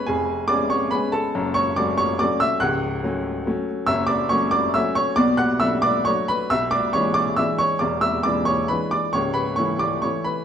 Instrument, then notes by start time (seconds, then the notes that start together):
upright piano
0.06 F1 F2 G#4 G#5
0.48 G#3 B3 C#4 D5 D6
0.70 C#5 C#6
0.91 G#3 B3 C#4 B4 B5
1.12 A4 A5
1.35 F#1 F#2
1.54 C#5 C#6
1.76 F#3 A3 C#4 D5 D6
1.98 C#5 C#6
2.19 F#3 A3 C#4 D5 D6
2.40 E5 E6
2.60 C#1 C#2 F#5 F#6
3.04 F#3 A3 C#4
3.47 F#3 A3 C#4
3.86 F#1 F#2 E5 E6
4.07 D5 D6
4.29 F#3 A3 C#4 C#5 C#6
4.51 D5 D6
4.74 F#3 A3 C#4 E5 E6
4.95 C#5 C#6
5.16 B1 B2 D5 D6
5.37 F#5 F#6
5.60 F#3 A3 D4 E5 E6
5.82 D5 D6
6.05 F#3 A3 D4 C#5 C#6
6.28 B4 B5
6.50 B1 B2 E5 E6
6.71 D5 D6
6.93 E3 G#3 D4 C#5 C#6
7.14 D5 D6
7.36 E3 G#3 D4 E5 E6
7.58 C#5 C#6
7.79 E1 E2 D5 D6
8.01 E5 E6
8.23 E3 G#3 D4 D5 D6
8.45 C#5 C#6
8.68 E3 G#3 D4 B4 B5
8.91 D5 D6
9.13 C#1 C#2 C#5 C#6
9.34 B4 B5
9.56 E3 A3 E4 C#5 C#6
9.79 D5 D6
10.02 E3 A3 E4 C#5 C#6
10.24 B4 B5